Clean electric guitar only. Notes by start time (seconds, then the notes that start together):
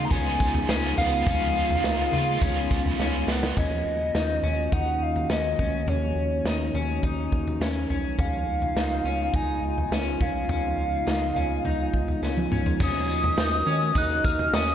Already playing: F4
0.12 C#4
0.69 C#4
0.98 B3
1.27 C#4
1.84 D#4
2.13 F4
2.42 C#4
3.00 C#4
3.29 B3
3.57 C#4
4.15 D#4
4.43 C#4
4.72 D#4
5.30 C#4
5.59 C#4
5.88 C#4
6.47 D#4
6.75 C#4
7.04 D#4
7.61 C#4
7.90 C#4
8.19 C#4
8.77 D#4
9.05 C#4
9.34 D#4
9.92 C#4
10.21 C#4
10.50 C#4
11.07 D#4
11.36 C#4
11.65 D#4
12.23 C#4
12.52 C#4
12.80 C#4
13.37 D#4
13.67 C#4
13.96 D#4
14.54 C#4